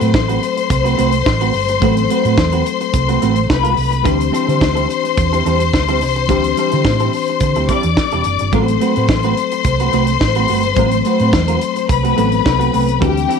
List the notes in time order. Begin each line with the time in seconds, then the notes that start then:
Already playing: F#3 A3 C4 A4 C5 C6
0.00 A2 A3 C4 F#4 B4, closed hi-hat
0.14 A1, kick, snare
0.28 A3 C4 F#4 B4, closed hi-hat
0.42 muted clean electric guitar stroke, closed hi-hat
0.57 muted clean electric guitar stroke, closed hi-hat
0.70 C2, muted clean electric guitar stroke, kick, closed hi-hat
0.84 A3 C4 F#4 B4, closed hi-hat
0.97 C2 A3 C4 F#4 B4, closed hi-hat
1.12 muted clean electric guitar stroke, closed hi-hat
1.26 A1, muted clean electric guitar stroke, kick, snare
1.41 A3 C4 F#4 B4, closed hi-hat
1.53 G1, muted clean electric guitar stroke, open hi-hat
1.68 muted clean electric guitar stroke, closed hi-hat
1.80 A1 F#3 A3 C4 F#4 A4, kick, closed hi-hat
1.84 B4
1.97 muted clean electric guitar stroke, closed hi-hat
2.10 A3 C4 F#4 B4, closed hi-hat
2.25 A2 A3 C4 F#4 B4, closed hi-hat
2.38 E2, kick, snare
2.52 A3 C4 F#4 B4, closed hi-hat
2.65 muted clean electric guitar stroke, closed hi-hat
2.81 muted clean electric guitar stroke, closed hi-hat
2.93 C2, muted clean electric guitar stroke, kick, closed hi-hat
3.08 A3 C4 F#4 B4, closed hi-hat
3.22 A1 A3 C4 F#4 B4, closed hi-hat
3.36 muted clean electric guitar stroke, closed hi-hat
3.49 C2 B4 B5, muted clean electric guitar stroke, kick, snare
3.63 A3 C4 F#4 B4, closed hi-hat
3.77 C2, open hi-hat
3.91 muted clean electric guitar stroke, closed hi-hat
4.03 D2 E3 G3 C4 D4 E4 G4 A4 C5 C6, kick, closed hi-hat
4.19 muted clean electric guitar stroke, closed hi-hat
4.32 G3 C4 E4 A4, closed hi-hat
4.48 D3 G3 C4 E4 A4, closed hi-hat
4.61 D2, kick, snare
4.75 G3 C4 E4 A4, closed hi-hat
4.88 muted clean electric guitar stroke, closed hi-hat
5.04 muted clean electric guitar stroke, closed hi-hat
5.17 E2, muted clean electric guitar stroke, kick, closed hi-hat
5.33 G3 C4 E4 A4, closed hi-hat
5.45 E2 G3 C4 E4 A4, closed hi-hat
5.60 muted clean electric guitar stroke, closed hi-hat
5.73 D2, muted clean electric guitar stroke, kick, snare
5.88 G3 C4 E4 A4, closed hi-hat
6.01 C2, muted clean electric guitar stroke, snare, open hi-hat
6.16 muted clean electric guitar stroke, closed hi-hat
6.27 D2 E3 G3 C4 D4 E4 G4 A4, kick, closed hi-hat
6.44 muted clean electric guitar stroke, closed hi-hat
6.57 G3 C4 E4 A4, closed hi-hat
6.71 D3 G3 C4 E4 A4, closed hi-hat
6.85 A2, muted clean electric guitar stroke, kick, snare
6.99 G3 C4 E4 A4, closed hi-hat
7.13 muted clean electric guitar stroke, open hi-hat
7.27 muted clean electric guitar stroke, closed hi-hat
7.40 D3, muted clean electric guitar stroke, kick, closed hi-hat
7.55 D2 G3 C4 E4 A4, closed hi-hat
7.68 G3 C4 E4 A4 D5 D6, kick, closed hi-hat
7.83 E2, muted clean electric guitar stroke, closed hi-hat
7.97 muted clean electric guitar stroke, kick, snare
8.11 E1 G3 C4 E4 A4, closed hi-hat
8.24 F#1, muted clean electric guitar stroke, closed hi-hat
8.39 G1, muted clean electric guitar stroke, closed hi-hat
8.52 A1 F#3 A3 C4 F#4 A4 B4 C5 C6, kick, closed hi-hat
8.68 muted clean electric guitar stroke, closed hi-hat
8.80 A3 C4 F#4 B4, closed hi-hat
8.96 A2 A3 C4 F#4 B4, closed hi-hat
9.09 A1, kick, snare
9.23 A3 C4 F#4 B4, closed hi-hat
9.37 muted clean electric guitar stroke, closed hi-hat
9.51 muted clean electric guitar stroke, closed hi-hat
9.64 C2, muted clean electric guitar stroke, kick, closed hi-hat
9.79 A3 C4 F#4 B4, closed hi-hat
9.92 C2 A3 C4 F#4 B4, closed hi-hat
10.07 muted clean electric guitar stroke, closed hi-hat
10.21 A1, muted clean electric guitar stroke, kick, snare
10.35 A3 C4 F#4 B4, closed hi-hat
10.48 G1 A3 C4 F#4 B4, open hi-hat
10.63 muted clean electric guitar stroke, closed hi-hat
10.75 A1 F#3 A3 C4 F#4 B4 C5, kick, closed hi-hat
10.91 muted clean electric guitar stroke, closed hi-hat
11.05 A3 C4 F#4 B4, closed hi-hat
11.19 A2 A3 C4 F#4 B4, closed hi-hat
11.33 E2, kick, snare
11.48 A3 C4 F#4 B4, closed hi-hat
11.61 muted clean electric guitar stroke, closed hi-hat
11.76 muted clean electric guitar stroke, closed hi-hat
11.89 C2 B4 B5, muted clean electric guitar stroke, kick, closed hi-hat
12.03 A3 C4 F#4 B4, closed hi-hat
12.16 A1 F#3 A3 B3 C4 F#4 A4 B4, closed hi-hat
12.32 muted clean electric guitar stroke, closed hi-hat
12.45 C2, muted clean electric guitar stroke, kick, snare
12.59 A3 C4 F#4 B4, closed hi-hat
12.73 C2 A3 C4 F#4 B4, open hi-hat
12.87 muted clean electric guitar stroke, closed hi-hat
13.00 D2 E3 G3 C4 D4 E4 F#4 G4 A4 G5, kick, closed hi-hat
13.09 G4
13.15 muted clean electric guitar stroke, closed hi-hat
13.28 G3 C4 E4 A4, closed hi-hat